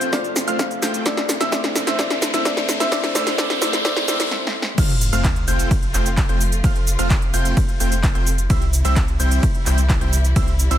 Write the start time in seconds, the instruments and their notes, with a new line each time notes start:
Already playing: string section C3 A3 F4 C5, supersaw synth A3 C4 F4 C5 G5, grand piano A3 C4 F4 C5 G6, riser
0.01 closed hi-hat, cabasa
0.12 grand piano A3 C4 F4 C5 F6, supersaw synth A3 C4 F4 C5, synth pluck D5, kick, snare, open hi-hat, cabasa
0.24 closed hi-hat, cabasa
0.36 snare, open hi-hat, cabasa
0.47 grand piano A3 C4 F4 C5 F6, supersaw synth A3 C4 F4 C5 F5, synth pluck F5, closed hi-hat, cabasa
0.59 synth pluck F5, kick, snare, closed hi-hat, cabasa
0.71 closed hi-hat, cabasa
0.82 supersaw synth A3 C4 F4 C5 G5, grand piano G6, snare, open hi-hat, cabasa
0.94 closed hi-hat, cabasa
1.05 string section C3 E4 C5, grand piano A3 C4 E4 C5 E6, synth pluck D5, kick, snare, closed hi-hat, cabasa
1.17 snare, closed hi-hat, cabasa
1.29 snare, open hi-hat, cabasa
1.39 grand piano A3 C4 E4 C5 E6, supersaw synth A3 C4 E4 C5 E5, synth pluck E5, snare, closed hi-hat, cabasa
1.52 grand piano A3 C4 E4 C5, supersaw synth A3 C4 E4 C5 E5, synth pluck D5, kick, snare, closed hi-hat, cabasa
1.64 snare, closed hi-hat, cabasa
1.76 snare, open hi-hat, cabasa
1.86 grand piano A3 C4 E4 C5 E6, supersaw synth A3 C4 E4 C5 E5, synth pluck E5, snare, closed hi-hat, cabasa
1.98 grand piano A3 C4 E4 C5 E6, supersaw synth A3 C4 E4 C5 E5, synth pluck D5, kick, snare, closed hi-hat, cabasa
2.10 snare, closed hi-hat, cabasa
2.22 snare, open hi-hat, cabasa
2.32 grand piano A3 C4 E4 C5 E6, supersaw synth A3 C4 E4 C5 E5, synth pluck E5, snare, closed hi-hat, cabasa
2.45 grand piano A3 C4 E4 C5, supersaw synth A3 C4 E4 C5 E5, synth pluck D5, kick, snare, closed hi-hat, cabasa
2.57 snare, closed hi-hat, cabasa
2.69 snare, open hi-hat, cabasa
2.79 grand piano A3 C4 E4 C5 E6, supersaw synth A3 C4 E4 C5 E5, synth pluck E5, snare, closed hi-hat, cabasa
2.91 grand piano A3 C4 E4 C5 E6, supersaw synth C4 C5, synth pluck D5, kick, snare, closed hi-hat, cabasa
3.04 snare, closed hi-hat, cabasa
3.15 grand piano A3 C4 E4 C5 E6, supersaw synth A3 C4 E4 C5 E5, synth pluck D5, snare, open hi-hat, cabasa
3.27 snare, closed hi-hat, cabasa
3.38 grand piano A3 C4 E4 C5 E6, supersaw synth A3 C4 E4 C5 E5, synth pluck D5, kick, snare, closed hi-hat, cabasa
3.50 snare, closed hi-hat, cabasa
3.61 grand piano A3 C4 E4 C5 E6, supersaw synth A3 C4 E4 C5 E5, synth pluck D5, snare, open hi-hat, cabasa
3.73 snare, closed hi-hat, cabasa
3.84 grand piano A3 C4 E4 C5 E6, supersaw synth A3 C4 E4 C5 E5, synth pluck D5, kick, snare, open hi-hat, cabasa
3.97 snare, closed hi-hat, cabasa
4.08 grand piano A3 C4 E4 C5 E6, supersaw synth A3 C4 E4 C5 E5, synth pluck D5, snare, open hi-hat, cabasa
4.20 snare, closed hi-hat, cabasa
4.31 snare
4.47 snare
4.62 snare
4.78 sub bass F1, string section C3 F3 A3 F4, supersaw synth A3 C4 F4 C5 F5, grand piano F6, kick, closed hi-hat, crash, ride, sub drop, cabasa
4.90 closed hi-hat
5.01 open hi-hat, cabasa
5.13 sub bass F1, supersaw synth A3 C4 F4 C5 F5, grand piano F6, closed hi-hat, cabasa
5.24 kick, clap, closed hi-hat, ride, cabasa
5.36 closed hi-hat
5.48 sub bass F1, supersaw synth A3 C4 F4 C5 G5, grand piano G6, open hi-hat, cabasa
5.59 closed hi-hat, cabasa
5.71 kick, closed hi-hat, ride, cabasa
5.83 closed hi-hat
5.94 sub bass F1, supersaw synth A3 C4 F4 C5 G5, grand piano G6, clap, open hi-hat, cabasa
6.06 closed hi-hat, cabasa
6.17 kick, clap, closed hi-hat, ride, cabasa
6.29 sub bass F1, supersaw synth A3 C4 F4 C5 G5, grand piano G6, closed hi-hat
6.41 open hi-hat, cabasa
6.52 closed hi-hat, cabasa
6.64 sub bass F1, supersaw synth A3 C4 F4 C5 F5, grand piano F6, kick, closed hi-hat, ride, cabasa
6.76 closed hi-hat
6.87 open hi-hat, cabasa
6.99 sub bass F1, supersaw synth A3 C4 F4 C5 F5, grand piano F6, closed hi-hat, cabasa
7.10 kick, clap, closed hi-hat, ride, cabasa
7.22 closed hi-hat
7.34 sub bass F1, supersaw synth A3 C4 F4 C5 G5, grand piano G6, open hi-hat, cabasa
7.45 closed hi-hat, cabasa
7.57 kick, open hi-hat, ride, cabasa
7.69 closed hi-hat
7.80 sub bass F1, supersaw synth A3 C4 F4 C5 G5, grand piano G6, open hi-hat, cabasa
7.92 closed hi-hat, cabasa
8.03 kick, clap, closed hi-hat, ride, cabasa
8.15 sub bass F1, supersaw synth A3 C4 F4 C5 G5, grand piano G6, closed hi-hat
8.27 open hi-hat, cabasa
8.38 closed hi-hat, cabasa
8.50 sub bass C2, string section E3 G3 E4, supersaw synth G3 C4 E4 C5 E5, grand piano E6, kick, closed hi-hat, ride, cabasa
8.62 closed hi-hat
8.73 open hi-hat, cabasa
8.85 sub bass C2, supersaw synth G3 C4 E4 C5 E5, grand piano E6, closed hi-hat, cabasa
8.96 kick, clap, closed hi-hat, ride, cabasa
9.08 closed hi-hat
9.20 sub bass C2, supersaw synth G3 C4 E4 C5 G5, grand piano G6, open hi-hat, cabasa
9.31 closed hi-hat, cabasa
9.43 kick, closed hi-hat, ride, cabasa
9.55 closed hi-hat
9.66 sub bass C2, supersaw synth G3 C4 E4 C5 G5, grand piano G6, clap, open hi-hat, cabasa
9.78 closed hi-hat, cabasa
9.89 kick, clap, closed hi-hat, ride, cabasa
10.01 sub bass C2, supersaw synth G3 C4 E4 C5 G5, grand piano G6, closed hi-hat
10.13 open hi-hat, cabasa
10.24 closed hi-hat, cabasa
10.36 sub bass C2, supersaw synth G3 C4 E4 C5 E5, grand piano E6, kick, closed hi-hat, ride, cabasa
10.48 closed hi-hat
10.59 open hi-hat, cabasa
10.71 sub bass C2, supersaw synth G3 C4 E4 C5 E5, grand piano E6, closed hi-hat, cabasa